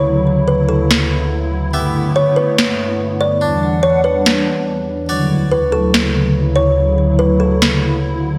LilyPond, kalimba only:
\new Staff \with { instrumentName = "Kalimba" } { \time 4/4 \key d \major \tempo 4 = 143 r4 b'8 a'4. r4 | r4 cis''8 b'2 d''8 | r4 cis''8 b'2~ b'8 | r4 b'8 a'2 cis''8 |
r4 b'8 a'4. r4 | }